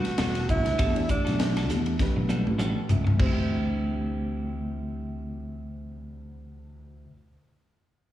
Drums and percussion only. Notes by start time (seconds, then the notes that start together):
0.05 snare, ride
0.18 snare, hi-hat pedal, ride
0.35 snare, ride
0.49 kick, hi-hat pedal
0.66 snare, ride
0.79 kick, hi-hat pedal, ride
0.96 ride
1.09 kick, hi-hat pedal
1.27 snare, ride
1.40 snare, hi-hat pedal, ride
1.57 snare, ride
1.69 snare, hi-hat pedal
1.86 ride
1.99 kick, snare, hi-hat pedal
2.29 hi-hat pedal, high tom
2.47 high tom
2.59 hi-hat pedal, mid tom
2.89 floor tom, hi-hat pedal
3.07 floor tom
3.19 kick, crash